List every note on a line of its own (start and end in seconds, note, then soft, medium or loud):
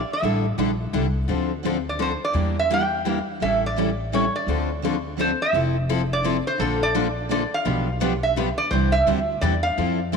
0.00 0.11 D5 medium
0.13 0.57 E5 medium
0.22 0.51 A1 medium
0.22 0.44 D3 soft
0.22 0.45 G3 medium
0.22 0.45 D4 medium
0.22 0.45 E4 medium
0.22 0.45 A4 medium
0.58 0.88 A#1 medium
0.58 0.70 D3 medium
0.58 0.70 G3 medium
0.58 0.70 D4 medium
0.58 0.70 E4 medium
0.58 0.70 A4 medium
0.93 1.24 C2 medium
0.93 1.05 D3 medium
0.93 1.05 G3 medium
0.93 1.06 D4 medium
0.93 1.06 E4 medium
0.93 1.06 A4 medium
1.29 2.14 D2 medium
1.29 1.51 D3 medium
1.29 1.51 F3 medium
1.29 1.51 C4 medium
1.29 1.51 D4 medium
1.29 1.52 A4 medium
1.63 1.75 D3 medium
1.63 1.75 F3 medium
1.63 1.76 C4 medium
1.63 1.76 D4 medium
1.63 1.76 A4 medium
1.89 2.01 D5 medium
1.99 2.11 D3 medium
1.99 2.11 F3 medium
1.99 2.11 C4 medium
1.99 2.12 D4 medium
1.99 2.12 A4 medium
1.99 2.24 C5 medium
2.25 2.56 D5 medium
2.34 3.20 E2 medium
2.34 2.56 E3 medium
2.34 2.57 G3 medium
2.34 2.56 A#3 medium
2.34 2.57 D4 medium
2.34 2.57 E4 medium
2.34 2.57 G4 medium
2.34 2.57 A#4 medium
2.59 2.71 E5 medium
2.70 2.82 E3 medium
2.70 2.82 G3 medium
2.70 2.82 A#3 medium
2.70 2.83 D4 medium
2.70 2.82 E4 medium
2.70 2.83 G4 medium
2.70 2.83 A#4 medium
2.70 3.26 G5 medium
3.05 3.17 E3 medium
3.05 3.17 G3 medium
3.05 3.17 A#3 medium
3.05 3.17 D4 medium
3.05 3.18 E4 medium
3.05 3.18 G4 medium
3.05 3.18 A#4 medium
3.40 4.27 A1 medium
3.40 3.62 E3 medium
3.40 3.62 G3 medium
3.40 3.63 C#4 medium
3.40 3.63 E4 medium
3.40 3.63 A4 medium
3.40 3.63 E5 medium
3.66 3.98 D5 medium
3.76 3.88 E3 medium
3.76 3.88 G3 medium
3.76 3.89 C#4 medium
3.76 3.89 E4 medium
3.76 3.89 A4 medium
4.12 4.24 E3 medium
4.12 4.24 G3 medium
4.12 4.24 C#4 medium
4.12 4.24 E4 medium
4.12 4.24 A4 medium
4.12 4.34 C#5 medium
4.36 5.37 D5 medium
4.47 5.32 D2 medium
4.47 4.69 D3 medium
4.47 4.69 F3 medium
4.47 4.69 C4 medium
4.47 4.69 D4 medium
4.47 4.70 A4 medium
4.82 4.94 D3 medium
4.82 4.94 F3 medium
4.82 4.95 C4 medium
4.82 4.95 D4 medium
4.82 4.95 A4 medium
5.17 5.29 D3 medium
5.17 5.29 F3 medium
5.17 5.29 C4 medium
5.17 5.30 D4 medium
5.17 5.30 A4 medium
5.17 5.40 C5 medium
5.42 5.87 E5 medium
5.53 6.38 F1 medium
5.53 5.75 F3 medium
5.53 5.75 C4 medium
5.53 5.76 E4 medium
5.53 5.76 A4 medium
5.89 6.01 F3 medium
5.89 6.01 C4 medium
5.89 6.01 E4 medium
5.89 6.01 A4 loud
6.13 6.45 D5 medium
6.23 6.35 F3 medium
6.23 6.36 C4 medium
6.23 6.36 E4 medium
6.23 6.36 A4 medium
6.47 6.61 C5 medium
6.58 7.44 A#1 medium
6.58 6.80 D3 medium
6.58 6.80 F3 medium
6.58 6.81 A#3 medium
6.58 6.81 D4 medium
6.58 6.81 A4 medium
6.58 6.83 A4 medium
6.83 7.30 D5 medium
6.94 7.06 D3 medium
6.94 7.06 F3 medium
6.94 7.06 A#3 medium
6.94 7.06 D4 medium
6.94 7.07 A4 loud
7.29 7.41 D3 medium
7.29 7.41 F3 medium
7.29 7.41 A#3 medium
7.29 7.41 D4 medium
7.29 7.42 A4 medium
7.29 7.51 D5 medium
7.54 7.99 F5 medium
7.65 8.50 B1 medium
7.65 7.87 B2 medium
7.65 7.87 F3 medium
7.65 7.87 B3 medium
7.65 7.88 D4 medium
7.65 7.87 G4 medium
7.65 7.88 B4 medium
8.00 8.12 B2 medium
8.00 8.12 F3 medium
8.00 8.12 B3 medium
8.00 8.12 D4 loud
8.00 8.12 G4 loud
8.00 8.13 B4 medium
8.23 8.56 E5 medium
8.36 8.48 B2 medium
8.36 8.48 F3 medium
8.36 8.48 B3 medium
8.36 8.48 D4 medium
8.36 8.48 G4 medium
8.36 8.48 B4 medium
8.58 8.70 D5 medium
8.71 8.99 C2 medium
8.71 8.93 C3 medium
8.71 8.93 D3 medium
8.71 8.93 E3 medium
8.71 8.93 G3 medium
8.71 8.94 C4 medium
8.71 8.94 D4 medium
8.71 8.94 E4 medium
8.71 8.94 G4 medium
8.71 8.94 C5 medium
8.92 9.38 E5 medium
9.06 9.36 D2 medium
9.06 9.18 C3 medium
9.06 9.18 D3 medium
9.06 9.18 E3 medium
9.06 9.18 G3 medium
9.06 9.18 C4 medium
9.06 9.18 D4 medium
9.06 9.19 E4 medium
9.06 9.19 G4 medium
9.06 9.18 C5 medium
9.41 9.72 E2 medium
9.41 9.53 C3 medium
9.41 9.53 D3 medium
9.41 9.53 E3 medium
9.41 9.53 G3 medium
9.41 9.53 C4 medium
9.41 9.54 D4 medium
9.41 9.54 E4 medium
9.41 9.54 G4 medium
9.41 9.54 C5 medium
9.41 9.64 D5 medium
9.63 10.12 F5 medium
9.77 10.17 F2 medium
9.77 9.98 F3 medium
9.77 9.99 C4 medium
9.77 9.99 E4 medium
9.77 9.99 A4 medium
10.12 10.17 F3 medium
10.12 10.17 C4 medium
10.12 10.17 E4 loud
10.12 10.17 A4 medium